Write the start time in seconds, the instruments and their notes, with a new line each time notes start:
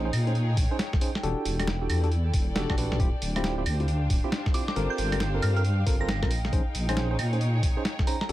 Already playing: wobble bass A#1, string section D#4 G#4 F5, analog synth pad G5
0.05 tine electric piano C#4 D#4 G#4 C5
0.13 wobble bass A#2, string section C#5, open hi-hat, claves
0.27 tine electric piano C#4 D#4 G#4 C5, closed hi-hat
0.35 closed hi-hat
0.57 wobble bass A#1, kick, open hi-hat
0.71 tine electric piano C#4 D#4 G#4 C5
0.79 snare, closed hi-hat
0.93 kick, snare
1.01 tine electric piano C#4 D#4 G#4 C5, open hi-hat
1.15 snare
1.23 wobble bass E1, tine electric piano D4 F#4 G4 A4, string section E4, closed hi-hat
1.45 wobble bass E1, string section D5, open hi-hat
1.60 tine electric piano D4 F#4 G4 A4, snare, closed hi-hat, claves
1.66 string section A4, snare, closed hi-hat
1.82 tine electric piano D4 F#4 G4 A4
1.90 wobble bass E2, open hi-hat, claves
2.04 tine electric piano D4 F#4 G4 A4, closed hi-hat
2.12 closed hi-hat
2.34 wobble bass E1, kick, open hi-hat
2.56 tine electric piano D4 F#4 G4 A4, snare, closed hi-hat
2.70 wobble bass G1, tine electric piano D4 F#4 G4 A4, kick, snare, claves
2.78 wobble bass A1, tine electric piano D4 F#4 G4 B4, open hi-hat
2.92 wobble bass B1, snare
3.00 wobble bass D1, tine electric piano C4 E4 F4 G4, string section D4, analog synth pad G5, kick, closed hi-hat
3.22 wobble bass D1, open hi-hat
3.34 tine electric piano C4 E4 F4 G4, string section C5, snare, closed hi-hat, claves
3.44 snare, closed hi-hat
3.54 tine electric piano C4 E4 F4 G4, string section G4
3.66 wobble bass D2, open hi-hat, claves
3.80 tine electric piano C4 E4 F4 G4, string section F5, closed hi-hat
3.88 closed hi-hat
4.10 wobble bass D1, kick, open hi-hat
4.24 tine electric piano C4 E4 F4 G4
4.32 snare, closed hi-hat
4.46 kick, snare
4.54 tine electric piano C4 E4 F4 G4, synth bell D6, open hi-hat
4.68 synth bell D6, snare
4.76 wobble bass G1, tine electric piano C4 F4 A4 A#4, closed hi-hat
4.90 synth bell G6
4.98 wobble bass G1, open hi-hat
5.12 tine electric piano C4 F4 A4 A#4, snare, closed hi-hat, claves
5.20 snare, closed hi-hat
5.34 tine electric piano C4 F4 A4 A#4
5.42 wobble bass G2, synth bell F6, open hi-hat, claves
5.56 tine electric piano C4 F4 A4 A#4, synth bell F6, closed hi-hat
5.65 closed hi-hat
5.86 wobble bass G1, tine electric piano C4 F4 A4 A#4, kick, open hi-hat
6.01 tine electric piano C4 F4 A4 A#4, synth bell A#6
6.09 snare, closed hi-hat
6.23 wobble bass A#1, tine electric piano C4 F4 A4 A#4, kick, snare, claves
6.31 string section D#4, open hi-hat
6.45 snare
6.49 wobble bass A#1, tine electric piano C#4 D#4 G#4 C5, string section G#4, kick, closed hi-hat
6.75 wobble bass A#1, open hi-hat
6.89 tine electric piano C#4 D#4 G#4 C5, snare, closed hi-hat, claves
6.97 snare, closed hi-hat
7.10 tine electric piano C#4 D#4 G#4 C5, string section C#5
7.19 wobble bass A#2, open hi-hat, claves
7.33 tine electric piano C#4 D#4 G#4 C5, closed hi-hat
7.41 closed hi-hat
7.63 wobble bass A#1, kick, open hi-hat
7.77 tine electric piano C#4 D#4 G#4 C5
7.85 snare, closed hi-hat
7.99 kick, snare
8.07 tine electric piano C#4 D#4 G#4 C5, synth bell A#5, open hi-hat
8.21 synth bell A#5, snare
8.29 wobble bass E1, tine electric piano D4 F#4 G4 A4, closed hi-hat